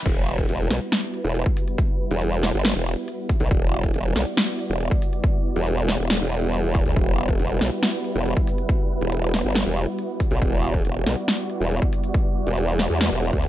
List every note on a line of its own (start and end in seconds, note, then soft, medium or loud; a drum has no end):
0.06 0.47 E1 loud
0.06 13.48 G3 medium
0.06 13.48 B3 medium
0.06 13.48 E4 medium
0.06 13.48 F#4 medium
0.06 3.50 B4 loud
0.06 kick loud
0.06 closed hi-hat medium
0.06 crash loud
0.38 kick medium
0.38 closed hi-hat medium
0.49 0.69 E1 medium
0.49 closed hi-hat medium
0.70 0.80 B1 loud
0.70 snare medium
0.70 open hi-hat medium
0.92 snare loud
0.92 closed hi-hat medium
1.14 closed hi-hat medium
1.24 1.44 E1 medium
1.35 closed hi-hat medium
1.46 kick loud
1.57 open hi-hat loud
1.68 closed hi-hat medium
1.78 kick loud
1.78 closed hi-hat medium
2.11 2.52 E1 loud
2.11 closed hi-hat medium
2.22 closed hi-hat medium
2.43 snare medium
2.43 open hi-hat medium
2.54 2.74 G1 medium
2.65 snare loud
2.65 closed hi-hat medium
2.75 2.95 E1 loud
2.86 closed hi-hat medium
3.08 closed hi-hat medium
3.29 kick loud
3.29 open hi-hat medium
3.40 3.49 B1 loud
3.40 closed hi-hat medium
3.51 3.92 E1 medium
3.51 6.95 D5 loud
3.51 kick loud
3.51 closed hi-hat medium
3.83 kick medium
3.83 closed hi-hat medium
3.94 4.14 E1 loud
3.94 closed hi-hat medium
4.16 4.25 B1 loud
4.16 snare medium
4.16 open hi-hat medium
4.37 snare loud
4.37 closed hi-hat medium
4.59 closed hi-hat medium
4.70 4.90 E1 medium
4.81 closed hi-hat medium
4.91 kick loud
5.02 open hi-hat medium
5.13 closed hi-hat medium
5.24 kick loud
5.24 closed hi-hat medium
5.56 5.98 E1 loud
5.56 closed hi-hat medium
5.67 closed hi-hat medium
5.88 snare medium
5.88 open hi-hat medium
5.99 6.19 E1 loud
6.10 snare loud
6.10 closed hi-hat medium
6.21 6.84 E1 loud
6.32 closed hi-hat soft
6.53 closed hi-hat medium
6.75 kick loud
6.75 open hi-hat medium
6.86 6.95 D2 loud
6.86 closed hi-hat medium
6.96 7.38 E1 medium
6.96 10.40 B4 loud
6.96 kick loud
6.96 closed hi-hat medium
7.29 kick medium
7.29 closed hi-hat medium
7.40 7.59 E1 loud
7.40 closed hi-hat medium
7.61 7.70 B1 loud
7.61 snare medium
7.61 open hi-hat medium
7.83 snare loud
7.83 closed hi-hat medium
8.04 closed hi-hat soft
8.15 8.35 E1 medium
8.26 closed hi-hat medium
8.37 kick loud
8.47 open hi-hat medium
8.58 closed hi-hat medium
8.69 kick loud
8.69 closed hi-hat medium
9.01 9.43 E1 loud
9.01 closed hi-hat medium
9.12 closed hi-hat medium
9.34 snare medium
9.34 open hi-hat medium
9.45 9.64 G1 loud
9.55 snare loud
9.55 closed hi-hat medium
9.66 9.86 E1 loud
9.77 closed hi-hat medium
9.99 closed hi-hat medium
10.20 kick loud
10.20 open hi-hat medium
10.31 10.40 B1 loud
10.31 closed hi-hat medium
10.42 10.83 E1 loud
10.42 13.48 D5 loud
10.42 kick loud
10.42 closed hi-hat medium
10.74 kick medium
10.74 closed hi-hat medium
10.85 11.05 E1 loud
10.85 closed hi-hat medium
11.06 11.16 B1 loud
11.06 snare medium
11.06 open hi-hat medium
11.28 snare loud
11.28 closed hi-hat medium
11.50 closed hi-hat soft
11.60 11.80 E1 medium
11.71 closed hi-hat medium
11.82 kick loud
11.93 open hi-hat loud
12.04 closed hi-hat medium
12.14 kick loud
12.14 closed hi-hat medium
12.47 12.88 E1 loud
12.47 closed hi-hat medium
12.58 closed hi-hat medium
12.79 snare medium
12.79 open hi-hat medium
12.90 13.10 E2 medium
13.01 snare loud
13.01 closed hi-hat medium
13.12 13.31 E1 medium
13.22 closed hi-hat medium
13.33 13.48 D2 medium
13.33 kick medium
13.44 closed hi-hat medium